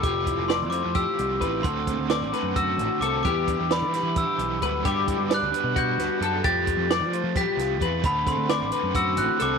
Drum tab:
HH |xxxxxxx|xxxxxxx|xxxxxxx|xxxxxxx|
SD |--o----|--oo---|--oo---|--o--o-|
BD |oo--o-o|oo--o--|oo--o-o|oo--o--|

HH |xxxxxxx|xxxxxxx|
SD |--o-oo-|--o----|
BD |oo--o-o|oo--o--|